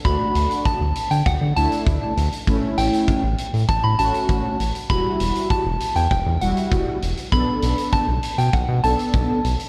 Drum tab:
HH |x-xxx-xxx-xxx-xx|x-xxx-xxx-xxx-xx|x-xxx-xxx-xxx-xx|x-xxx-xxx-xxx-xx|
BD |o---o---o---o---|o---o---o---o---|o---o---o---o---|o---o---o---o---|